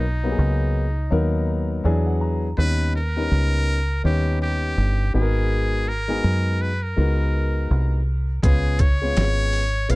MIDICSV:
0, 0, Header, 1, 5, 480
1, 0, Start_track
1, 0, Tempo, 731707
1, 1694, Time_signature, 4, 2, 24, 8
1, 6530, End_track
2, 0, Start_track
2, 0, Title_t, "Muted trumpet"
2, 0, Program_c, 0, 59
2, 0, Note_on_c, 0, 63, 81
2, 1116, Note_off_c, 0, 63, 0
2, 1698, Note_on_c, 0, 71, 109
2, 1920, Note_off_c, 0, 71, 0
2, 1938, Note_on_c, 0, 70, 107
2, 2630, Note_off_c, 0, 70, 0
2, 2658, Note_on_c, 0, 67, 90
2, 2879, Note_off_c, 0, 67, 0
2, 2898, Note_on_c, 0, 67, 93
2, 3350, Note_off_c, 0, 67, 0
2, 3375, Note_on_c, 0, 68, 88
2, 3857, Note_on_c, 0, 70, 109
2, 3867, Note_off_c, 0, 68, 0
2, 4338, Note_on_c, 0, 71, 94
2, 4348, Note_off_c, 0, 70, 0
2, 4481, Note_on_c, 0, 70, 82
2, 4491, Note_off_c, 0, 71, 0
2, 5296, Note_off_c, 0, 70, 0
2, 5535, Note_on_c, 0, 68, 91
2, 5774, Note_on_c, 0, 73, 110
2, 5784, Note_off_c, 0, 68, 0
2, 6496, Note_on_c, 0, 77, 99
2, 6506, Note_off_c, 0, 73, 0
2, 6530, Note_off_c, 0, 77, 0
2, 6530, End_track
3, 0, Start_track
3, 0, Title_t, "Grand piano"
3, 0, Program_c, 1, 0
3, 153, Note_on_c, 1, 54, 67
3, 156, Note_on_c, 1, 58, 63
3, 157, Note_on_c, 1, 59, 63
3, 160, Note_on_c, 1, 63, 63
3, 163, Note_on_c, 1, 67, 64
3, 194, Note_off_c, 1, 67, 0
3, 205, Note_on_c, 1, 68, 70
3, 546, Note_off_c, 1, 54, 0
3, 547, Note_off_c, 1, 58, 0
3, 548, Note_off_c, 1, 59, 0
3, 550, Note_off_c, 1, 63, 0
3, 572, Note_off_c, 1, 68, 0
3, 725, Note_on_c, 1, 54, 85
3, 728, Note_on_c, 1, 58, 67
3, 730, Note_on_c, 1, 59, 74
3, 732, Note_on_c, 1, 63, 70
3, 734, Note_on_c, 1, 70, 96
3, 1196, Note_off_c, 1, 54, 0
3, 1199, Note_off_c, 1, 59, 0
3, 1206, Note_on_c, 1, 54, 88
3, 1209, Note_on_c, 1, 59, 77
3, 1211, Note_off_c, 1, 58, 0
3, 1211, Note_on_c, 1, 74, 67
3, 1212, Note_on_c, 1, 62, 74
3, 1213, Note_off_c, 1, 63, 0
3, 1214, Note_off_c, 1, 70, 0
3, 1214, Note_on_c, 1, 64, 69
3, 1216, Note_on_c, 1, 68, 94
3, 1346, Note_off_c, 1, 74, 0
3, 1355, Note_on_c, 1, 78, 69
3, 1446, Note_off_c, 1, 78, 0
3, 1451, Note_on_c, 1, 82, 67
3, 1613, Note_off_c, 1, 54, 0
3, 1614, Note_off_c, 1, 59, 0
3, 1616, Note_off_c, 1, 62, 0
3, 1617, Note_off_c, 1, 64, 0
3, 1618, Note_off_c, 1, 68, 0
3, 1676, Note_off_c, 1, 82, 0
3, 1687, Note_on_c, 1, 55, 67
3, 1688, Note_on_c, 1, 59, 69
3, 1690, Note_on_c, 1, 61, 63
3, 1694, Note_on_c, 1, 63, 62
3, 1696, Note_on_c, 1, 71, 77
3, 1934, Note_off_c, 1, 55, 0
3, 1935, Note_off_c, 1, 59, 0
3, 1936, Note_off_c, 1, 61, 0
3, 1938, Note_off_c, 1, 63, 0
3, 1939, Note_off_c, 1, 71, 0
3, 2075, Note_on_c, 1, 55, 73
3, 2076, Note_on_c, 1, 59, 56
3, 2079, Note_on_c, 1, 61, 57
3, 2080, Note_on_c, 1, 63, 62
3, 2084, Note_on_c, 1, 70, 74
3, 2467, Note_off_c, 1, 55, 0
3, 2468, Note_off_c, 1, 59, 0
3, 2469, Note_off_c, 1, 61, 0
3, 2470, Note_off_c, 1, 63, 0
3, 2471, Note_off_c, 1, 70, 0
3, 2649, Note_on_c, 1, 55, 69
3, 2650, Note_on_c, 1, 59, 62
3, 2653, Note_on_c, 1, 61, 59
3, 2656, Note_on_c, 1, 63, 54
3, 2658, Note_on_c, 1, 73, 70
3, 3314, Note_off_c, 1, 55, 0
3, 3315, Note_off_c, 1, 59, 0
3, 3316, Note_off_c, 1, 61, 0
3, 3318, Note_off_c, 1, 63, 0
3, 3318, Note_off_c, 1, 73, 0
3, 3370, Note_on_c, 1, 56, 74
3, 3371, Note_on_c, 1, 59, 69
3, 3373, Note_on_c, 1, 63, 66
3, 3376, Note_on_c, 1, 66, 69
3, 3379, Note_on_c, 1, 68, 64
3, 3422, Note_on_c, 1, 70, 88
3, 3427, Note_off_c, 1, 68, 0
3, 3852, Note_off_c, 1, 56, 0
3, 3853, Note_off_c, 1, 59, 0
3, 3854, Note_off_c, 1, 63, 0
3, 3855, Note_off_c, 1, 66, 0
3, 3878, Note_off_c, 1, 70, 0
3, 3989, Note_on_c, 1, 56, 66
3, 3994, Note_on_c, 1, 59, 59
3, 3994, Note_on_c, 1, 63, 59
3, 3997, Note_on_c, 1, 66, 57
3, 3999, Note_on_c, 1, 68, 77
3, 4384, Note_off_c, 1, 56, 0
3, 4386, Note_off_c, 1, 59, 0
3, 4387, Note_off_c, 1, 63, 0
3, 4388, Note_off_c, 1, 66, 0
3, 4389, Note_off_c, 1, 68, 0
3, 4569, Note_on_c, 1, 56, 62
3, 4572, Note_on_c, 1, 59, 54
3, 4574, Note_on_c, 1, 63, 63
3, 4577, Note_on_c, 1, 66, 62
3, 4579, Note_on_c, 1, 70, 72
3, 5234, Note_off_c, 1, 56, 0
3, 5236, Note_off_c, 1, 59, 0
3, 5237, Note_off_c, 1, 63, 0
3, 5238, Note_off_c, 1, 66, 0
3, 5239, Note_off_c, 1, 70, 0
3, 5530, Note_on_c, 1, 56, 70
3, 5534, Note_on_c, 1, 59, 61
3, 5535, Note_on_c, 1, 61, 67
3, 5537, Note_on_c, 1, 65, 67
3, 5540, Note_on_c, 1, 71, 79
3, 5776, Note_off_c, 1, 56, 0
3, 5778, Note_off_c, 1, 59, 0
3, 5779, Note_off_c, 1, 61, 0
3, 5779, Note_off_c, 1, 65, 0
3, 5781, Note_off_c, 1, 71, 0
3, 5915, Note_on_c, 1, 56, 67
3, 5917, Note_on_c, 1, 59, 58
3, 5919, Note_on_c, 1, 61, 53
3, 5922, Note_on_c, 1, 65, 57
3, 5924, Note_on_c, 1, 73, 71
3, 6307, Note_off_c, 1, 56, 0
3, 6308, Note_off_c, 1, 59, 0
3, 6309, Note_off_c, 1, 61, 0
3, 6310, Note_off_c, 1, 65, 0
3, 6312, Note_off_c, 1, 73, 0
3, 6487, Note_on_c, 1, 56, 63
3, 6490, Note_on_c, 1, 59, 57
3, 6492, Note_on_c, 1, 61, 61
3, 6493, Note_on_c, 1, 64, 43
3, 6495, Note_on_c, 1, 71, 79
3, 6530, Note_off_c, 1, 56, 0
3, 6530, Note_off_c, 1, 59, 0
3, 6530, Note_off_c, 1, 61, 0
3, 6530, Note_off_c, 1, 64, 0
3, 6530, Note_off_c, 1, 71, 0
3, 6530, End_track
4, 0, Start_track
4, 0, Title_t, "Fingered electric bass"
4, 0, Program_c, 2, 33
4, 0, Note_on_c, 2, 35, 87
4, 230, Note_off_c, 2, 35, 0
4, 254, Note_on_c, 2, 37, 98
4, 710, Note_off_c, 2, 37, 0
4, 733, Note_on_c, 2, 39, 85
4, 1190, Note_off_c, 2, 39, 0
4, 1215, Note_on_c, 2, 40, 97
4, 1670, Note_off_c, 2, 40, 0
4, 1695, Note_on_c, 2, 39, 94
4, 2150, Note_off_c, 2, 39, 0
4, 2174, Note_on_c, 2, 37, 91
4, 2630, Note_off_c, 2, 37, 0
4, 2654, Note_on_c, 2, 39, 88
4, 3110, Note_off_c, 2, 39, 0
4, 3134, Note_on_c, 2, 31, 92
4, 3362, Note_off_c, 2, 31, 0
4, 3375, Note_on_c, 2, 32, 79
4, 4068, Note_off_c, 2, 32, 0
4, 4095, Note_on_c, 2, 42, 87
4, 4550, Note_off_c, 2, 42, 0
4, 4577, Note_on_c, 2, 37, 81
4, 5031, Note_off_c, 2, 37, 0
4, 5057, Note_on_c, 2, 36, 96
4, 5512, Note_off_c, 2, 36, 0
4, 5532, Note_on_c, 2, 37, 92
4, 5989, Note_off_c, 2, 37, 0
4, 6015, Note_on_c, 2, 32, 87
4, 6471, Note_off_c, 2, 32, 0
4, 6492, Note_on_c, 2, 34, 78
4, 6530, Note_off_c, 2, 34, 0
4, 6530, End_track
5, 0, Start_track
5, 0, Title_t, "Drums"
5, 5532, Note_on_c, 9, 36, 92
5, 5534, Note_on_c, 9, 42, 90
5, 5598, Note_off_c, 9, 36, 0
5, 5599, Note_off_c, 9, 42, 0
5, 5767, Note_on_c, 9, 42, 76
5, 5773, Note_on_c, 9, 36, 83
5, 5832, Note_off_c, 9, 42, 0
5, 5838, Note_off_c, 9, 36, 0
5, 6013, Note_on_c, 9, 42, 91
5, 6018, Note_on_c, 9, 38, 101
5, 6079, Note_off_c, 9, 42, 0
5, 6084, Note_off_c, 9, 38, 0
5, 6250, Note_on_c, 9, 46, 52
5, 6316, Note_off_c, 9, 46, 0
5, 6492, Note_on_c, 9, 42, 84
5, 6530, Note_off_c, 9, 42, 0
5, 6530, End_track
0, 0, End_of_file